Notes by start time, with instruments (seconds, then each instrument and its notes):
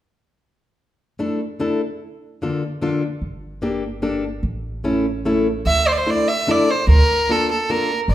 1.19 steel-string acoustic guitar A3 D4 E4 A4
1.60 steel-string acoustic guitar A3 D4 E4 A4
2.42 steel-string acoustic guitar D3 A#3 D4 F4 A4
2.82 steel-string acoustic guitar D3 A#3 D4 F4 A4
3.22 upright bass G1
3.62 steel-string acoustic guitar A#3 D4 G4 A4
4.02 steel-string acoustic guitar A#3 D4 G4 A4
4.43 upright bass A1
4.84 steel-string acoustic guitar A3 C#4 E4 A4
5.25 steel-string acoustic guitar A3 C#4 E4 A4
5.66 upright bass D2, violin E5
5.88 violin C5
5.92 violin D5
5.97 violin C5
6.06 steel-string acoustic guitar A3 D4 E4 A4, violin D5
6.28 violin E5
6.47 steel-string acoustic guitar A3 D4 E4 A4, violin D5
6.71 violin C5
6.87 upright bass D2, violin A#4
7.29 steel-string acoustic guitar A#3 D4 F4 A4, violin A4
7.52 violin A4
7.70 steel-string acoustic guitar A#3 D4 F4 A4, violin A#4
8.08 upright bass G1